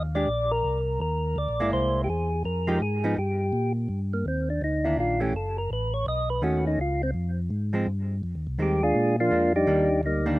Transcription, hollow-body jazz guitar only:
0.15 G#3 D4 G4
1.60 G#3 A#3 E4
2.67 F3 G#3 D#4 G4
3.04 F3 B3 D#4
4.85 D#3 A#3 D4
5.20 E3 A3 C#4
6.42 D#3 A3 C#4
7.73 F3 G#3 C4
8.59 D#3 G#3 C4
9.31 F3 G#3 D4
9.67 D#3 G3 A#3 D4
10.26 D#3 G3 A#3 D4

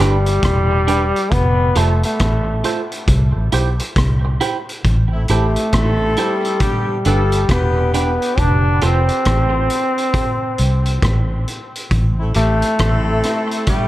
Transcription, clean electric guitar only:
0.00 D4 G4 B4
0.27 muted clean electric guitar stroke
0.71 muted clean electric guitar stroke
0.88 D4 G4 B4
1.76 F4 A4 C5
2.64 F4 A4 C5
3.52 E4 G4 C5
3.80 muted clean electric guitar stroke
4.25 muted clean electric guitar stroke
4.41 E4 G4 C5
5.30 E4 A4 C5
6.18 E4 A4 C5
7.06 D4 G4 B4
7.34 muted clean electric guitar stroke
7.78 muted clean electric guitar stroke
7.94 D4 G4 B4
8.82 F4 A4 C5

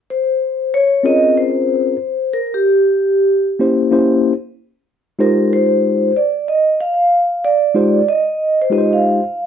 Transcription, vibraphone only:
0.10 C5
0.74 C#5
1.06 D#5
1.37 C5
2.33 A#4
2.54 G4
5.21 A#4
5.53 C5
6.17 D5
6.48 D#5
6.81 F5
7.45 D5
8.09 D#5
8.62 C5
8.73 D#5
8.93 F5

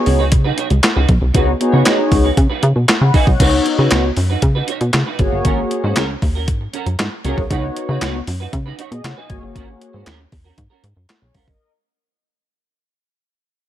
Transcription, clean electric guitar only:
0.07 muted clean electric guitar stroke
0.19 D#4 F#4 B4
0.32 muted clean electric guitar stroke
0.44 D#4 F#4 B4
0.57 D#4 F#4 C#5
0.70 muted clean electric guitar stroke
0.83 muted clean electric guitar stroke
0.96 D#4 F#4 B4
1.09 muted clean electric guitar stroke
1.21 muted clean electric guitar stroke
1.34 D#4 F#4 B4
1.47 muted clean electric guitar stroke
1.60 muted clean electric guitar stroke
1.73 D#4 F#4 C#5
1.85 D#4 F#4 B4
1.98 muted clean electric guitar stroke
2.11 muted clean electric guitar stroke
2.24 D#4 F#4 B4
2.37 muted clean electric guitar stroke
2.50 D#4 F#4 B4
2.63 muted clean electric guitar stroke
2.76 muted clean electric guitar stroke
2.88 muted clean electric guitar stroke
3.01 muted clean electric guitar stroke
3.14 D#4 F#4 B4
3.27 muted clean electric guitar stroke
3.40 D#4 F#4 B4
3.53 muted clean electric guitar stroke
3.65 muted clean electric guitar stroke
3.78 D#4 F#4 B4
3.91 D#4 F#4 B4
4.04 muted clean electric guitar stroke
4.17 muted clean electric guitar stroke
4.30 D#4 F#4 B4
4.42 muted clean electric guitar stroke
4.55 D#4 F#4 B4
4.68 D#4 F#4 C#5
4.81 muted clean electric guitar stroke
4.94 muted clean electric guitar stroke
5.06 D#4 F#4 B4
5.19 muted clean electric guitar stroke
5.33 muted clean electric guitar stroke
5.45 C#4 F#4 A#4
5.58 muted clean electric guitar stroke
5.71 muted clean electric guitar stroke
5.84 C#4 F#4 C5
5.97 C#4 F#4 A#4
6.10 muted clean electric guitar stroke
6.23 muted clean electric guitar stroke
6.35 C#4 F#4 A#4
6.61 muted clean electric guitar stroke
6.73 C#4 F#4 A#4
6.86 muted clean electric guitar stroke
7.12 muted clean electric guitar stroke
7.24 C#4 F#4 A#4
7.38 muted clean electric guitar stroke
7.50 D#4 F#4 B4
7.63 muted clean electric guitar stroke
7.77 muted clean electric guitar stroke
7.89 D#4 F#4 B4
8.02 D#4 F#4 B4
8.15 muted clean electric guitar stroke
8.28 muted clean electric guitar stroke
8.40 D#4 F#4 B4
8.53 muted clean electric guitar stroke
8.66 D#4 F#4 B4
8.79 D#4 F#4 C#5
8.92 muted clean electric guitar stroke
9.04 muted clean electric guitar stroke
9.17 D#4 F#4 B4
9.30 muted clean electric guitar stroke
9.42 muted clean electric guitar stroke
9.55 C#4 F#4 A#4
9.68 muted clean electric guitar stroke
9.81 muted clean electric guitar stroke
9.93 C#4 F#4 C5
10.06 C#4 F#4 A#4
10.19 muted clean electric guitar stroke
10.32 muted clean electric guitar stroke
10.44 C#4 F#4 A#4
10.57 muted clean electric guitar stroke
10.70 C#4 F#4 A#4
10.83 muted clean electric guitar stroke
10.96 muted clean electric guitar stroke
11.09 muted clean electric guitar stroke
11.22 muted clean electric guitar stroke
11.35 C#4 F#4 A#4
11.48 muted clean electric guitar stroke

